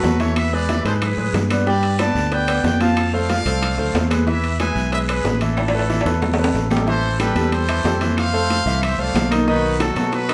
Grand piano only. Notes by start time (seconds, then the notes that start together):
Already playing: F#3 F#4 A4
0.20 E3 E4 E5
0.53 G#3 G#4 B4
0.69 E3 E4 E5
0.85 G#3 G#4 B4
1.18 G#3 G#4 B4
1.50 B3 B4 D5
1.66 G3 G4 G5
2.00 B3 B4 D5
2.31 B3 B4 D5
2.48 B3 B4 D5
2.81 F3 F4 F5
3.13 A3 A4 C5
3.29 F3 F4 F5
3.46 A3 A4 C5
3.78 A3 A4 C5
4.10 G#3 G#4 B4
4.27 E3 E4 E5
4.60 G#3 G#4 B4
4.92 G#3 G#4 B4
5.09 G#3 G#4 B4
5.42 E3 E4 E5
5.74 A3 A4 B4
5.89 E3 E4 E5
6.06 A3 A4 B4
6.39 A3 A4 B4
6.71 G3 G4 A4
6.87 E3 E4 E5
7.19 G3 G4 A4
7.36 G3 G4 A4
7.69 E3 E4 E5
7.85 G3 G4 A4
8.01 E3 E4 E5
8.33 A3 A4 C5
8.66 E3 E4 E5
8.98 A3 A4 C5
9.31 D#3 D#4 D#5
9.47 D#3 D#4 D#5
9.80 F#3 F#4 A4
9.96 F#3 F#4 A4
10.29 D#3 D#4 D#5